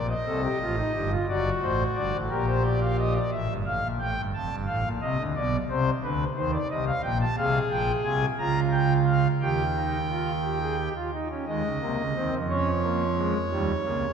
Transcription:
0.00 0.13 A#1 medium
0.00 0.13 A#2 medium
0.09 1.11 D#5 medium
0.26 0.47 C2 medium
0.26 0.47 C3 medium
0.26 0.41 A4 medium
0.43 0.58 G4 medium
0.61 0.82 A1 medium
0.61 0.82 A2 medium
0.61 0.75 F4 medium
0.77 0.92 D#4 medium
0.94 1.16 G1 medium
0.94 1.15 G2 medium
0.94 1.09 G4 medium
1.11 1.26 F4 medium
1.29 1.50 F#1 medium
1.29 1.50 F#2 loud
1.29 2.17 F#4 medium
1.29 1.50 D5 medium
1.62 1.83 A1 medium
1.62 1.83 A2 medium
1.62 1.84 C5 medium
1.96 2.11 G1 medium
1.96 2.11 G2 medium
1.96 2.17 D5 medium
2.13 2.28 A1 medium
2.13 2.28 A2 medium
2.30 3.19 A#1 medium
2.30 3.18 A#2 medium
2.30 3.18 G4 medium
2.30 2.45 A#4 medium
2.48 2.63 C5 medium
2.65 2.80 D5 medium
2.82 2.97 F5 medium
2.99 3.14 D#5 medium
3.15 3.30 D5 medium
3.32 3.47 A1 medium
3.32 3.47 A2 medium
3.32 3.53 E5 medium
3.49 3.64 G1 medium
3.49 3.64 G2 medium
3.66 3.81 A1 medium
3.66 3.81 A2 medium
3.66 3.87 F5 medium
3.83 3.98 A#1 soft
3.83 3.98 A#2 medium
4.00 4.15 A1 medium
4.00 4.15 A2 medium
4.00 4.21 G5 medium
4.17 4.32 G1 medium
4.17 4.32 G2 medium
4.34 4.49 F1 medium
4.34 4.49 F2 medium
4.34 4.55 A5 medium
4.51 4.66 G1 medium
4.51 4.66 G2 medium
4.67 4.82 A1 medium
4.67 4.82 A2 medium
4.67 4.88 F5 medium
4.84 4.99 A#1 medium
4.84 4.99 A#2 medium
5.02 5.16 C2 medium
5.02 5.16 C3 medium
5.02 5.23 D#5 medium
5.19 5.34 D2 medium
5.19 5.33 D3 medium
5.36 5.57 B1 medium
5.36 5.57 B2 medium
5.36 5.57 D5 medium
5.69 5.90 C2 medium
5.69 5.90 C3 medium
5.69 5.90 C5 medium
6.04 6.24 D2 medium
6.04 6.24 D3 medium
6.04 6.24 B4 medium
6.37 6.57 D#2 medium
6.37 6.57 D#3 medium
6.37 6.51 C5 medium
6.53 6.68 D5 medium
6.70 6.91 C2 medium
6.70 6.91 C3 medium
6.70 6.85 D#5 medium
6.87 7.01 F5 medium
7.03 7.24 A#1 medium
7.03 7.24 A#2 medium
7.03 7.18 G5 medium
7.21 7.35 A5 medium
7.37 7.58 C2 medium
7.37 7.58 C3 medium
7.37 8.25 G#4 medium
7.37 7.58 F5 medium
7.71 7.92 A#1 medium
7.71 7.92 A#2 medium
7.71 7.92 G5 medium
8.05 8.26 C2 medium
8.05 8.26 C3 medium
8.05 8.26 G#5 medium
8.39 9.27 C#2 medium
8.39 9.27 C#3 medium
8.39 9.27 F4 medium
8.39 8.60 A#5 medium
8.72 8.93 G5 medium
9.06 9.28 F5 medium
9.41 10.89 D#2 medium
9.41 10.89 D#3 medium
9.41 9.62 G4 medium
9.41 10.89 G5 medium
9.76 9.97 D#4 medium
10.10 10.31 F4 medium
10.44 10.59 G4 medium
10.61 10.76 G#4 medium
10.78 10.93 G4 soft
10.95 11.10 F4 medium
11.13 11.28 D#4 medium
11.30 11.45 C#4 medium
11.47 11.62 D#2 medium
11.47 11.62 D#3 medium
11.47 11.68 G#3 medium
11.47 12.35 D#5 medium
11.64 11.79 C#2 medium
11.64 11.79 C#3 medium
11.81 11.96 C2 medium
11.81 11.96 C3 medium
11.81 12.02 A#3 medium
11.98 12.13 C#2 medium
11.98 12.13 C#3 medium
12.16 12.30 D#2 medium
12.16 12.30 D#3 medium
12.16 12.37 C4 medium
12.32 13.34 F2 medium
12.32 13.34 F3 medium
12.49 12.70 C#4 medium
12.49 14.13 C#5 medium
12.83 13.04 A#3 medium
13.17 13.38 G#3 medium
13.51 13.72 D#2 medium
13.51 13.72 D#3 medium
13.51 13.72 G3 medium
13.84 14.05 C#2 medium
13.84 14.05 C#3 medium
13.84 14.05 A#3 medium

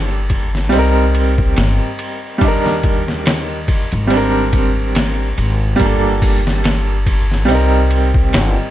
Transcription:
0.00 0.73 G1 medium
0.00 0.63 G3 medium
0.00 0.65 A#3 medium
0.00 0.66 D4 medium
0.00 0.68 A4 medium
0.30 kick medium
0.30 ride medium
0.55 snare soft
0.69 1.54 C2 medium
0.69 2.32 G3 medium
0.69 2.34 C4 medium
0.69 ride medium
0.75 2.35 D#4 medium
0.75 2.37 A#4 medium
1.15 ride medium
1.38 kick loud
1.57 1.78 G1 loud
1.57 snare loud
1.57 ride medium
1.99 ride medium
2.38 3.75 D#2 medium
2.38 4.01 G3 medium
2.38 4.03 D4 medium
2.38 kick loud
2.38 ride medium
2.44 4.05 D#4 medium
2.44 4.06 A#4 medium
2.66 snare soft
2.83 kick medium
2.83 ride medium
3.08 snare soft
3.26 snare loud
3.26 ride medium
3.68 kick medium
3.68 ride medium
3.92 5.34 G#1 loud
3.92 ride soft
4.07 5.70 G3 medium
4.07 5.72 C4 medium
4.07 ride medium
4.14 5.74 D4 medium
4.14 5.75 A#4 medium
4.53 kick medium
4.53 ride medium
4.95 snare loud
4.95 ride medium
5.38 5.75 G#1 medium
5.38 ride medium
5.76 7.39 G3 medium
5.76 7.41 A#3 medium
5.76 kick loud
5.76 ride medium
5.80 7.49 G1 loud
5.80 7.43 D4 medium
5.85 7.44 A4 medium
6.22 kick medium
6.22 open hi-hat medium
6.47 snare medium
6.64 snare loud
6.64 ride medium
7.06 kick medium
7.06 ride medium
7.31 snare soft
7.45 8.71 G3 medium
7.45 8.71 C4 medium
7.45 ride medium
7.49 8.30 C2 medium
7.49 8.71 D#4 medium
7.55 8.71 A#4 medium
7.91 ride medium
8.14 kick loud
8.33 8.54 G1 loud
8.33 snare loud
8.33 ride medium

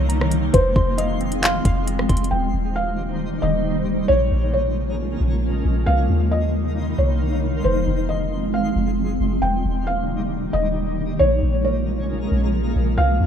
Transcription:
0.00 0.51 C2 loud
0.00 0.52 C3 medium
0.00 0.52 D#3 medium
0.00 0.52 G3 medium
0.00 0.50 A#3 medium
0.00 0.52 A#3 medium
0.00 0.52 D#4 medium
0.00 0.54 D#4 medium
0.00 0.50 C#5 medium
0.00 0.54 D#5 loud
0.00 2.28 C6 loud
0.09 0.54 A#5 medium
0.09 closed hi-hat medium
0.21 cross-stick medium
0.31 closed hi-hat medium
0.53 0.75 F1 loud
0.53 2.30 F3 medium
0.53 2.30 G#3 medium
0.53 2.30 C4 medium
0.53 2.30 F4 medium
0.53 0.95 C5 medium
0.53 kick loud
0.53 closed hi-hat medium
0.76 1.61 F1 loud
0.76 1.42 C6 loud
0.76 kick loud
0.98 1.40 D#5 medium
0.98 1.64 F5 medium
0.98 closed hi-hat medium
1.21 1.86 C4 medium
1.21 closed hi-hat soft
1.32 closed hi-hat medium
1.42 1.84 F5 medium
1.42 2.08 C6 loud
1.42 clap loud
1.42 closed hi-hat medium
1.65 2.08 F1 loud
1.65 2.32 F5 medium
1.65 kick loud
1.65 closed hi-hat medium
1.87 2.31 C4 medium
1.87 closed hi-hat medium
1.99 cross-stick medium
2.09 2.31 F1 loud
2.09 2.32 C6 medium
2.09 kick medium
2.09 closed hi-hat medium
2.17 closed hi-hat medium
2.24 closed hi-hat medium
2.31 2.53 D#1 loud
2.31 4.08 C3 medium
2.31 4.08 D#3 medium
2.31 4.08 G3 medium
2.31 7.61 A#3 medium
2.31 4.08 D#4 medium
2.31 4.08 C5 medium
2.31 2.73 G5 medium
2.54 3.39 D#1 loud
2.76 3.39 F5 medium
3.42 4.07 D#1 loud
3.42 4.05 D#5 medium
4.08 4.31 A#1 loud
4.08 5.85 C#3 medium
4.08 5.85 F3 medium
4.08 5.85 G#3 medium
4.08 5.85 C#4 medium
4.08 5.85 F4 medium
4.08 5.85 A#4 medium
4.08 4.51 C#5 loud
4.32 5.17 A#1 loud
4.54 5.39 C#5 medium
5.21 5.63 A#1 loud
5.65 5.86 A#1 loud
5.86 6.09 C2 loud
5.86 7.63 C3 medium
5.86 7.63 D#3 medium
5.86 7.63 G3 medium
5.86 7.63 A#3 medium
5.86 7.63 D#4 medium
5.86 6.29 F5 medium
5.86 11.16 C6 medium
6.10 6.95 D#2 loud
6.31 6.94 D#5 medium
6.98 7.62 C2 loud
6.98 7.61 C#5 medium
7.64 7.86 F1 loud
7.64 9.41 F3 medium
7.64 9.41 G#3 medium
7.64 9.41 C4 medium
7.64 9.41 F4 medium
7.64 8.06 C5 medium
7.87 8.73 F1 loud
8.09 8.51 D#5 medium
8.54 8.96 F5 medium
8.76 9.19 F1 loud
9.20 9.42 F1 loud
9.42 9.64 D#1 loud
9.42 11.19 C3 medium
9.42 11.19 D#3 medium
9.42 11.19 G3 medium
9.42 13.27 A#3 medium
9.42 11.19 D#4 medium
9.42 9.84 G5 medium
9.65 10.50 D#1 loud
9.87 10.50 F5 medium
10.53 11.18 D#1 loud
10.53 11.16 D#5 medium
11.19 11.42 A#1 loud
11.19 12.97 C#3 medium
11.19 12.97 F3 medium
11.19 12.96 G#3 medium
11.19 12.97 G#3 medium
11.19 12.96 C#4 medium
11.19 12.97 F4 medium
11.19 12.96 A#4 loud
11.19 11.62 C#5 loud
11.43 12.28 A#1 loud
11.64 12.50 C#5 medium
12.32 12.74 A#1 loud
12.76 12.97 A#1 loud
12.98 13.20 C2 loud
12.98 13.27 C3 medium
12.98 13.27 D#3 medium
12.98 13.27 G3 medium
12.98 13.27 A#3 medium
12.98 13.27 D#4 medium
12.98 13.27 F5 medium
12.98 13.27 C6 medium
13.20 13.27 D#2 loud

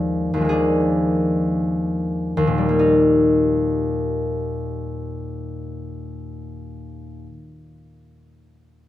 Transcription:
0.00 0.32 D#2 medium
0.00 0.36 F3 medium
0.00 0.40 G#3 medium
0.00 0.44 A#3 medium
0.00 2.55 F4 loud
0.00 0.48 G#4 medium
0.00 2.54 D5 loud
0.00 2.00 F5 loud
0.34 2.36 D#2 medium
0.34 2.79 F3 medium
0.41 2.81 G#3 medium
0.41 2.67 A#3 medium
0.49 2.85 D4 medium
0.49 2.85 G#4 medium
2.37 7.24 D#2 medium
2.47 7.34 A#2 medium
2.58 7.45 G3 medium
2.69 7.55 A#3 medium
2.79 7.66 D#4 medium

